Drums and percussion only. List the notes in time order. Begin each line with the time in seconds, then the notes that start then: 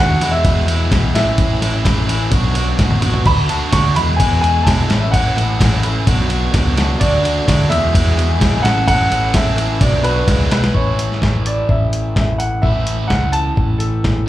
0.21 ride
0.45 kick, ride
0.68 ride
0.92 kick, snare, ride
1.15 snare, ride
1.38 kick, ride
1.62 ride
1.85 kick, snare, ride
2.09 ride
2.32 kick, ride
2.55 ride
2.79 kick, snare, ride
2.91 high tom
3.02 mid tom, ride
3.14 floor tom
3.26 kick, crash
3.49 ride
3.73 kick, snare, ride
3.96 ride
4.20 kick, ride
4.44 ride
4.67 kick, snare, ride
4.90 snare, ride
5.14 kick, ride
5.38 ride
5.61 kick, snare, ride
5.83 ride
6.07 kick, ride
6.30 ride
6.54 kick, snare, ride
6.77 snare, ride
7.01 kick, ride
7.25 ride
7.48 kick, snare, ride
7.72 ride
7.95 kick, ride
8.19 ride
8.41 kick, snare, ride
8.65 snare, ride
8.88 kick, ride
9.12 ride
9.34 kick, snare, ride
9.58 ride
9.81 kick, ride
10.04 ride
10.28 kick, snare, ride
10.51 snare, ride
10.64 snare
10.75 kick
10.99 closed hi-hat
11.12 snare
11.22 kick, snare
11.46 closed hi-hat
11.69 kick
11.93 closed hi-hat
12.16 kick, snare
12.40 closed hi-hat
12.63 kick
12.87 closed hi-hat
13.10 kick, snare
13.33 closed hi-hat
13.57 kick
13.80 closed hi-hat
14.04 kick, snare